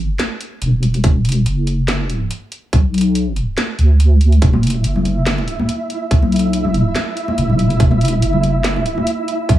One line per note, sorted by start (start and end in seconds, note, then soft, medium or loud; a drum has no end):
0.00 0.18 B1 loud
0.19 snare loud
0.19 closed hi-hat medium
0.41 closed hi-hat medium
0.62 1.02 E1 loud
0.62 closed hi-hat medium
0.83 closed hi-hat medium
0.94 closed hi-hat soft
1.04 1.45 E1 loud
1.04 kick loud
1.04 closed hi-hat medium
1.25 closed hi-hat medium
1.29 closed hi-hat medium
1.32 closed hi-hat medium
1.46 2.29 F#1 loud
1.46 closed hi-hat medium
1.67 closed hi-hat medium
1.88 snare loud
1.88 closed hi-hat medium
2.10 closed hi-hat medium
2.31 closed hi-hat medium
2.52 closed hi-hat medium
2.73 3.56 B1 loud
2.73 kick loud
2.73 closed hi-hat medium
2.94 closed hi-hat soft
2.98 closed hi-hat medium
3.01 closed hi-hat medium
3.15 closed hi-hat medium
3.36 closed hi-hat medium
3.58 snare loud
3.58 closed hi-hat medium
3.79 4.40 D2 medium
3.79 closed hi-hat medium
4.00 closed hi-hat medium
4.21 closed hi-hat medium
4.32 closed hi-hat soft
4.42 4.83 E1 loud
4.42 9.59 E4 medium
4.42 9.59 E5 medium
4.42 kick loud
4.42 closed hi-hat medium
4.53 muted conga soft
4.53 high conga loud
4.63 closed hi-hat soft
4.67 closed hi-hat medium
4.70 closed hi-hat medium
4.75 muted conga soft
4.84 5.67 F#1 loud
4.84 closed hi-hat medium
4.96 low conga medium
5.05 closed hi-hat soft
5.05 high conga medium
5.27 snare loud
5.27 closed hi-hat medium
5.38 muted conga medium
5.48 closed hi-hat medium
5.59 high conga loud
5.69 closed hi-hat medium
5.90 closed hi-hat medium
6.11 6.94 B1 loud
6.11 kick loud
6.11 closed hi-hat medium
6.22 muted conga soft
6.22 high conga medium
6.32 closed hi-hat soft
6.36 closed hi-hat medium
6.39 closed hi-hat medium
6.53 closed hi-hat medium
6.65 low conga medium
6.74 closed hi-hat medium
6.74 high conga medium
6.95 snare loud
6.95 closed hi-hat medium
6.95 muted conga medium
7.17 closed hi-hat medium
7.28 high conga loud
7.38 7.78 E1 loud
7.38 closed hi-hat medium
7.50 low conga medium
7.59 closed hi-hat soft
7.70 closed hi-hat soft
7.80 8.21 E1 loud
7.80 kick loud
7.80 closed hi-hat medium
7.91 muted conga soft
7.91 high conga medium
8.01 closed hi-hat soft
8.05 closed hi-hat medium
8.08 closed hi-hat medium
8.13 muted conga soft
8.22 9.05 F#1 loud
8.22 closed hi-hat medium
8.33 low conga medium
8.43 closed hi-hat medium
8.43 high conga medium
8.64 snare loud
8.64 closed hi-hat medium
8.76 muted conga medium
8.86 closed hi-hat medium
8.98 high conga medium
9.07 closed hi-hat medium
9.28 closed hi-hat medium
9.49 9.59 B1 loud
9.49 kick loud
9.49 closed hi-hat medium